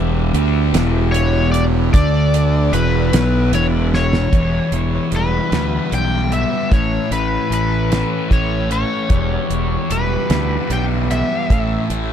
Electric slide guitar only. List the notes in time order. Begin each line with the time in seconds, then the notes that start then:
1.12 C#5
1.52 D5
1.94 D5
2.74 B4
3.55 C#5
3.95 C#5
5.16 B4
5.94 G5
6.33 E5
6.73 C#5
7.13 B4
7.54 B4
8.33 C#5
8.72 C#5
9.92 B4
10.73 G5
11.12 E5